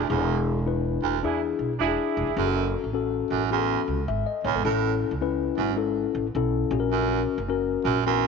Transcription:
0.08 E1 E2 D4 E4 G#4
0.66 D4 E4 B4
1.03 E1 D2
1.23 E2 D4 E4 G#4
1.59 B1
1.79 E1 D4 E4 F#4 G#4
1.88 G#4
2.17 E1
2.37 F#1 F#2 C#4 F#4 G#4
2.44 A4
2.84 A1
2.94 C#4 F#4 A4
3.30 A1 F#2
3.51 E2 C#4 F#4 G#4
3.59 A4
3.88 C#2
4.08 G#1 E5
4.26 D#5
4.44 G1 E2 C#5
4.54 G#1 A4
4.65 A1 A2 C#4 E4 A4
5.11 C#2
5.21 C#4 E4 B4
5.58 G#1 F#2
5.77 C#4 E4 A4
6.15 A1
6.35 B1 C#4 E4 A4
6.71 A#1 C#4 F#4 G#4
6.80 A#4
6.92 F#2
7.38 F#1
7.49 C#4 F#4 A#4
7.85 A#1 F#2
8.06 E2 C#4 F#4 A#4

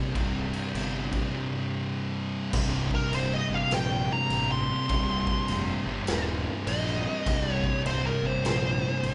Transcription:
Already playing: C2 G2 C3
0.15 C1 C2 G2 C3, kick, crash
0.54 crash
0.74 G1, crash
1.11 C2 G2 C3, kick, crash
1.32 C2 G2 C3
2.52 C1 C2 G2 C3, kick, crash
2.91 A#4, kick
3.12 C1 C5, crash
3.33 D#5
3.49 G1 C2 G2 C3
3.54 F5
3.70 A#1 G5, snare, crash
4.13 A#5
4.30 A1, crash
4.52 C6
4.66 C2 G2 C3
4.89 C1 C2 G2 C3, kick, crash
5.27 kick
5.48 F1, crash
5.84 G1 C2 G2 C3
6.07 D#1, snare, crash
6.67 A#1 D#5, crash
6.87 snare
7.03 C2 G2 C3
7.25 C1 C2 G2 C3, kick, crash
7.50 C#5
7.64 kick
7.85 C1 C5, crash
8.06 A#4
8.21 G1 C2 G2 C3
8.27 C5
8.44 A#1, snare, crash
9.03 A1, crash

